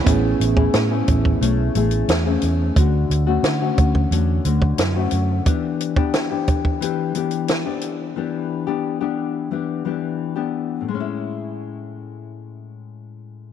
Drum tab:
HH |x-x-x-x-x-xxx-x-|x-x-x-x-x-x-x-x-|x-x-x-x-x-xxx-x-|----------------|
SD |----o-------o---|----o-------o---|----o-------o---|----------------|
BD |o--o--oo--------|o-----oo---o----|o--o--oo--------|----------------|

HH |----------------|
SD |----------------|
BD |----------------|